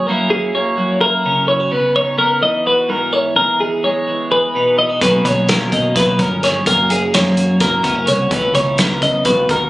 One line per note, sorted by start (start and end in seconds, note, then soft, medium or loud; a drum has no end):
0.07 1.70 F#2 medium
0.07 0.76 F#3 medium
0.07 0.54 A#3 medium
0.07 0.32 C#4 medium
0.07 1.02 E4 medium
0.07 0.30 A#4 medium
0.30 1.25 C#4 medium
0.30 0.54 G#4 medium
0.55 1.69 A#3 medium
0.55 1.01 C#5 medium
0.77 1.69 F#3 medium
1.01 1.48 E4 medium
1.01 1.48 A#4 medium
1.25 1.69 C#3 medium
1.25 1.70 C#4 medium
1.48 1.60 E4 medium
1.48 1.72 C#5 medium
1.60 1.72 F#4 soft
1.71 2.42 C#3 medium
1.71 2.17 B3 medium
1.71 1.95 B4 medium
1.96 2.89 D#4 medium
1.96 2.18 C#5 medium
2.18 3.37 B3 medium
2.18 2.42 A#4 medium
2.41 3.33 E3 medium
2.41 2.66 D#5 medium
2.66 3.13 F#4 medium
2.66 2.90 B4 medium
2.88 3.34 G#2 medium
2.88 3.40 D#4 medium
2.88 3.13 A#4 medium
3.13 4.30 E4 medium
3.13 3.36 C#5 medium
3.36 5.02 E2 medium
3.36 3.84 G#3 medium
3.36 3.60 A#4 medium
3.60 4.54 D#4 medium
3.60 3.84 G#4 medium
3.84 5.00 G#3 medium
3.84 4.31 C#5 medium
4.08 4.99 E3 medium
4.31 4.77 G#4 medium
4.31 4.78 B4 medium
4.55 4.99 B2 medium
4.55 5.00 D#4 medium
4.78 4.89 E4 medium
4.78 5.02 D#5 medium
4.89 5.01 F#4 soft
5.01 5.23 B1 loud
5.01 5.72 B2 medium
5.01 5.70 D#3 medium
5.01 5.49 A#3 soft
5.01 5.26 C#4 medium
5.01 5.94 F#4 medium
5.01 5.25 B4 loud
5.01 kick loud
5.01 closed hi-hat medium
5.25 5.69 B1 medium
5.25 6.19 C#4 medium
5.25 5.49 C#5 medium
5.25 kick medium
5.25 closed hi-hat medium
5.48 6.64 A#3 medium
5.48 5.73 A#4 medium
5.48 snare loud
5.48 closed hi-hat loud
5.71 5.97 B2 medium
5.71 6.63 D#3 medium
5.71 5.96 D#5 medium
5.71 kick medium
5.71 closed hi-hat medium
5.94 6.17 B1 loud
5.94 6.06 E4 medium
5.94 6.21 B4 medium
5.94 kick loud
5.94 snare soft
5.94 closed hi-hat medium
6.06 6.42 F#4 soft
6.18 6.63 G1 medium
6.18 6.63 F#2 medium
6.18 6.89 C#4 medium
6.18 6.44 A#4 medium
6.18 kick medium
6.18 closed hi-hat medium
6.43 6.64 G#4 medium
6.43 6.67 C#5 medium
6.43 snare soft
6.43 closed hi-hat medium
6.66 7.10 F#1 loud
6.66 8.29 F#2 medium
6.66 7.13 A#3 medium
6.66 6.90 A#4 medium
6.66 kick medium
6.66 closed hi-hat loud
6.90 7.83 C#4 medium
6.90 7.14 G#4 medium
6.90 closed hi-hat medium
7.14 7.57 F#2 medium
7.14 8.29 A#3 medium
7.14 7.61 C#5 medium
7.14 snare loud
7.14 closed hi-hat loud
7.36 8.28 F#3 medium
7.36 closed hi-hat medium
7.60 7.82 F#1 loud
7.60 8.06 E4 medium
7.60 8.08 A#4 medium
7.60 kick loud
7.60 snare soft
7.60 closed hi-hat medium
7.83 8.06 F#1 medium
7.83 8.28 C#3 medium
7.83 7.95 B3 medium
7.83 kick medium
7.83 closed hi-hat medium
7.95 8.31 C#4 medium
8.06 8.30 C2 medium
8.06 8.28 F#4 medium
8.06 8.32 C#5 medium
8.06 closed hi-hat medium
8.31 8.53 C#2 loud
8.31 9.02 C#3 medium
8.31 9.29 E3 medium
8.31 8.79 B3 medium
8.31 8.54 D#4 medium
8.31 9.26 E4 medium
8.31 8.55 B4 loud
8.31 kick loud
8.31 closed hi-hat medium
8.55 8.98 C#2 medium
8.55 9.49 D#4 medium
8.55 8.79 C#5 medium
8.55 kick medium
8.55 closed hi-hat medium
8.78 9.70 B3 medium
8.78 9.02 A#4 medium
8.78 snare loud
8.78 closed hi-hat medium
9.02 9.27 C#3 medium
9.02 9.25 D#5 medium
9.02 kick medium
9.02 closed hi-hat medium
9.25 9.47 C#2 loud
9.25 9.70 F#4 medium
9.25 9.49 B4 medium
9.25 kick loud
9.25 closed hi-hat medium
9.49 9.70 D#2 medium
9.49 9.70 G#2 medium
9.49 9.70 D#4 medium
9.49 9.70 A#4 medium
9.49 kick medium
9.49 closed hi-hat medium